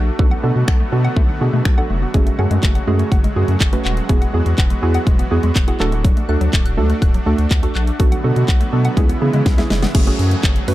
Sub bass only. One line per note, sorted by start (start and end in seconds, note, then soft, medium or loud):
0.00 0.11 A#1 medium
0.19 0.35 B1 loud
0.44 0.52 B2 loud
0.56 0.64 B2 loud
0.68 0.84 B1 loud
0.92 1.08 B2 loud
1.16 1.32 B1 loud
1.41 1.49 B2 loud
1.53 1.61 B2 loud
1.65 1.81 B1 loud
1.90 2.06 F1 medium
2.14 2.30 F#1 loud
2.39 2.47 F#2 loud
2.51 2.59 F#2 loud
2.63 2.79 F#1 loud
2.87 3.03 F#2 loud
3.12 3.28 F#1 loud
3.36 3.44 F#2 loud
3.48 3.56 F#2 medium
3.61 3.76 F#1 medium
3.85 4.01 D#1 medium
4.09 4.25 E1 loud
4.34 4.42 E2 loud
4.46 4.54 E2 loud
4.58 4.74 E1 loud
4.83 4.98 E2 loud
5.07 5.23 E1 loud
5.31 5.39 E2 loud
5.44 5.51 E2 medium
5.56 5.72 E1 loud
5.80 6.12 D1 loud
6.29 6.37 D2 loud
6.41 6.49 D2 loud
6.53 6.79 D1 loud
6.78 6.94 D2 loud
7.02 7.18 D1 loud
7.26 7.34 D2 loud
7.39 7.47 D2 loud
7.51 7.67 D2 medium
7.75 7.91 A#1 loud
8.00 8.16 B1 loud
8.24 8.32 B2 loud
8.36 8.44 B2 loud
8.48 8.64 B1 loud
8.73 8.89 B2 loud
8.97 9.13 C#2 loud
9.22 9.30 C#3 loud
9.34 9.42 C#3 medium
9.46 9.62 C#2 medium
9.70 9.86 F1 loud
9.95 10.11 F#1 loud
10.19 10.35 F#2 loud
10.43 10.59 F#1 loud
10.68 10.74 F#2 loud